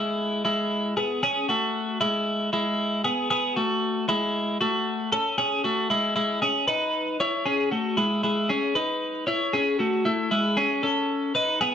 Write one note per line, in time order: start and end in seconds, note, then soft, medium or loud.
0.00 0.42 G#3 medium
0.00 0.42 E4 medium
0.45 0.94 G#3 medium
0.45 0.94 E4 medium
0.97 1.23 B3 medium
0.97 1.22 G#4 medium
1.23 1.49 C#4 medium
1.23 1.48 G#4 loud
1.49 1.98 A3 medium
1.49 1.98 F#4 medium
2.01 2.50 G#3 medium
2.01 2.49 E4 medium
2.53 3.02 G#3 medium
2.53 3.01 E4 medium
3.04 3.30 B3 medium
3.04 3.29 G#4 medium
3.30 3.57 B3 medium
3.30 3.56 G#4 medium
3.56 4.05 A3 medium
3.56 4.05 F#4 medium
4.09 4.58 G#3 medium
4.09 4.57 E4 medium
4.61 5.10 A3 medium
4.61 5.09 F#4 medium
5.12 5.38 C#4 medium
5.12 5.38 A4 medium
5.38 5.64 C#4 medium
5.38 5.64 G#4 loud
5.64 5.90 A3 medium
5.64 5.90 F#4 medium
5.90 6.15 G#3 medium
5.90 6.14 E4 medium
6.16 6.42 G#3 medium
6.16 6.42 E4 medium
6.42 6.68 C#4 medium
6.42 6.67 G#4 medium
6.68 7.17 D#4 medium
6.68 7.16 B4 medium
7.20 7.46 E4 medium
7.20 7.46 C#5 medium
7.46 7.72 C#4 medium
7.46 7.71 G#4 loud
7.71 7.98 A3 medium
7.71 7.97 F#4 medium
7.97 8.23 G#3 medium
7.97 8.22 E4 medium
8.23 8.50 G#3 medium
8.23 8.49 E4 medium
8.49 8.76 C#4 medium
8.49 8.75 G#4 medium
8.75 9.25 D#4 medium
8.75 9.24 B4 medium
9.27 9.54 E4 medium
9.27 9.53 C#5 medium
9.53 9.80 C#4 medium
9.53 9.79 G#4 loud
9.79 10.05 A3 medium
9.79 10.05 F#4 medium
10.05 10.31 A3 medium
10.05 10.30 E4 medium
10.31 10.57 G#3 medium
10.31 10.57 E4 medium
10.57 10.83 C#4 medium
10.57 10.83 G#4 loud
10.83 11.32 C#4 medium
10.83 11.32 A4 medium
11.35 11.61 D#4 medium
11.35 11.60 B4 medium
11.61 11.75 B3 medium
11.61 11.75 G#4 loud